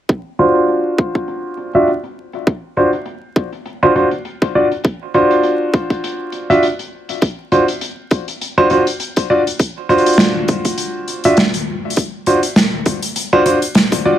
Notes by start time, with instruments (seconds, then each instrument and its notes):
0.09 kick, closed hi-hat
0.39 grand piano D4 F4 F#4 C5, closed hi-hat
0.55 closed hi-hat
0.68 closed hi-hat
0.98 kick, closed hi-hat
1.15 kick, closed hi-hat
1.28 closed hi-hat
1.57 closed hi-hat
1.73 grand piano D4 F4 F#4 E5, closed hi-hat
1.88 closed hi-hat
2.04 closed hi-hat
2.33 closed hi-hat
2.47 kick, closed hi-hat
2.77 grand piano D4 F4 F#4 C5, closed hi-hat
2.93 closed hi-hat
3.06 closed hi-hat
3.36 kick, closed hi-hat
3.53 closed hi-hat
3.66 closed hi-hat
3.83 grand piano D4 F4 F#4 C5
3.96 grand piano D4 F4 F#4 C5, closed hi-hat
4.11 closed hi-hat
4.25 closed hi-hat
4.42 kick, closed hi-hat
4.55 grand piano D4 F4 F#4 D5
4.71 closed hi-hat
4.84 kick, closed hi-hat
5.14 grand piano D4 F4 F#4 C5, closed hi-hat
5.31 closed hi-hat
5.43 closed hi-hat
5.73 kick, closed hi-hat
5.90 kick, closed hi-hat
6.04 closed hi-hat
6.32 closed hi-hat
6.50 grand piano D4 F4 F#4 E5, closed hi-hat
6.63 closed hi-hat
6.79 closed hi-hat
7.09 closed hi-hat
7.22 kick, closed hi-hat
7.52 grand piano D4 F4 F#4 C5, closed hi-hat
7.68 closed hi-hat
7.81 closed hi-hat
8.11 kick, closed hi-hat
8.28 closed hi-hat
8.41 closed hi-hat
8.58 grand piano D4 F4 F#4 C5
8.70 grand piano D4 F4 F#4 C5, closed hi-hat
8.87 closed hi-hat
9.00 closed hi-hat
9.16 kick, closed hi-hat
9.30 grand piano D4 F4 F#4 D5
9.47 closed hi-hat
9.59 kick, closed hi-hat
9.89 grand piano D4 F4 F#4 C5, closed hi-hat
9.98 closed hi-hat
10.06 closed hi-hat
10.13 closed hi-hat
10.18 snare, closed hi-hat
10.48 kick, closed hi-hat
10.65 kick, closed hi-hat
10.78 closed hi-hat
11.08 closed hi-hat
11.24 grand piano D4 F4 F#4 E5, closed hi-hat
11.37 snare, closed hi-hat
11.54 closed hi-hat
11.90 closed hi-hat
11.96 kick, closed hi-hat
12.26 grand piano D4 F4 F#4 C5, closed hi-hat
12.43 closed hi-hat
12.56 snare, closed hi-hat
12.86 kick, closed hi-hat
13.02 closed hi-hat
13.16 closed hi-hat
13.33 grand piano D4 F4 F#4 C5
13.46 grand piano D4 F4 F#4 C5, closed hi-hat
13.62 closed hi-hat
13.75 snare, closed hi-hat
13.92 kick, closed hi-hat
14.05 grand piano D4 F4 F#4 D5